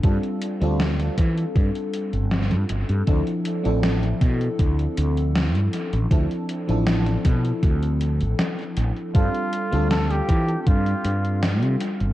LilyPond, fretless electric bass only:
\new Staff \with { instrumentName = "Fretless electric bass" } { \clef bass \time 4/4 \key d \minor \tempo 4 = 79 g,16 r8 d,8 r16 e16 r16 g,16 r8 g,,8 g,16 g,,16 g,16 | d,16 r8 a,,8 r16 b,16 r16 d,16 r16 d,8. g,16 r16 a,,16 | d,16 r8 a,,8 r16 b,16 r16 d,8. a,,16 r8 a,,16 r16 | g,16 r8 d,8 r16 e16 r16 g,16 r16 g,8. c16 r16 g,,16 | }